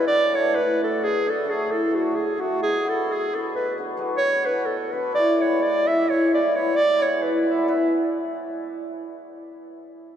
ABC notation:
X:1
M:11/8
L:1/8
Q:1/4=130
K:Emix
V:1 name="Clarinet"
d c B A G A G A F G F | G A G A B z2 c B A B | d c d e c d c d c B e | e z8 z2 |]
V:2 name="Hammered dulcimer"
z [F,A,DFA] z [F,A,DFA] z [F,A,DFA] [F,A,DFA] z [F,A,DFA] z [F,A,DFA] | z [F,B,DFB] z [F,B,DFB] z [F,B,DFB] [F,B,DFB] z [F,B,DFB] z [F,B,DFB] | z [G,B,EGB] z [G,B,EGB] z [G,B,EGB] [G,B,EGB] z [G,B,EGB] z [G,B,EGB] | [B,EGB] z8 z2 |]
V:3 name="Hammered dulcimer" clef=bass
D,2 A,,2 D,2 z A,,2 D,2 | B,,2 B,,2 B,,2 z B,,2 B,,2 | E,2 B,,2 E,2 z B,,2 E,2 | z8 z3 |]